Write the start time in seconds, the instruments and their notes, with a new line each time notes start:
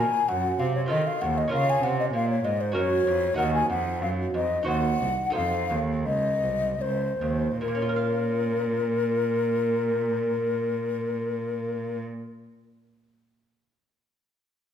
Already playing: lute A#2 C4 F#4 A#4, flute G#5
0.28 lute F#2, cello F#2, flute F#5
0.59 lute C3, cello C3, flute F5
0.75 flute C#5
0.86 lute C4 F4 A4, flute D#5
0.90 lute D#3, cello D#3
1.07 flute F5
1.21 lute D#2, cello D#2, flute F#5
1.38 flute D#5
1.48 lute C#4 F4 A#4
1.52 lute C#3, cello C#3, flute F5
1.70 flute G#5
1.83 lute C3, cello C3, flute F#5
2.00 flute D#5
2.13 lute A#2, cello A#2, flute F5
2.30 flute C#5
2.45 lute G#2, cello G#2, flute D#5
2.61 flute C5
2.72 lute C#4 F#4 A#4, flute C#5
2.76 lute F#2, cello F#2
3.07 lute F2, cello F2
3.34 lute D#4 F#4 A#4, flute F#5
3.38 cello D#2, lute D#2
3.54 flute G#5
3.70 lute F2, cello F2, flute F#5
4.02 lute F#2, cello F#2, flute F5
4.34 lute F2, cello F2, flute D#5
4.63 lute D#4 F#4 C5
4.67 lute D#2, cello D#2, flute F#5
5.01 cello C2
5.30 lute D#4 A4 C5
5.35 lute F2, cello F2, flute F5
5.70 lute D#2, cello D#2
6.06 cello C#2, flute D#5
6.43 cello C2
6.81 cello C#2, flute C5
7.21 cello D#2, lute D#2
7.61 lute A#2, cello A#2, flute A#4
7.68 lute A#3
7.75 lute C#4
7.82 lute F4
7.89 lute A#4
7.96 lute F5